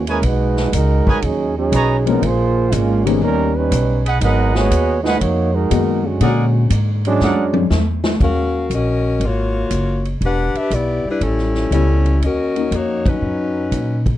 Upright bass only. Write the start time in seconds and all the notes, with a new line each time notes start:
Already playing: D#2
0.22 B1
0.72 C#2
1.22 D#2
1.72 B1
2.22 A#1
2.72 G#1
3.21 D#2
3.71 B1
4.21 G#1
4.71 D#2
5.21 F2
5.71 F#2
6.20 A#2
6.70 G#2
7.20 F#2
7.70 E2
8.20 D#2
8.70 A#1
9.20 G#1
9.70 F#1
10.21 E1
10.54 muted upright bass stroke
10.70 B1
11.05 muted upright bass stroke
11.21 A1
11.71 C#2
12.21 D#2
12.71 F2
13.21 F#2
13.71 A#2